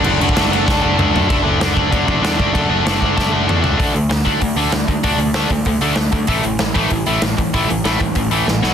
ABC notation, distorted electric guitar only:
X:1
M:4/4
L:1/8
Q:1/4=192
K:Dlyd
V:1 name="Distorted electric guitar"
[D,A,D] [D,A,D] [D,A,D] [D,A,D] [D,A,D] [D,A,D] [D,A,D] [D,A,D] | [D,A,D] [D,A,D] [D,A,D] [D,A,D] [D,A,D] [D,A,D] [D,A,D] [D,A,D] | [D,A,D] [D,A,D] [D,A,D] [D,A,D] [D,A,D] [D,A,D] [D,A,D] [D,A,D] | [K:D] [D,A,D] [D,A,] [D,A,] [D,A,D] [D,A,] [D,A,D] [D,A,] [D,A,] |
[D,A,D] [D,A,] [D,A,D] [D,A,] [D,A,] [D,A,D] [D,A,] [D,A,] | [A,,E,A,] [A,,E,] [A,,E,] [A,,E,A,] [A,,E,] [A,,E,A,] [A,,E,] [A,,E,] | [A,,E,A,] [A,,E,] [A,,E,A,] [A,,E,] [A,,E,] [A,,E,A,] [A,,E,] [B,,F,B,] |]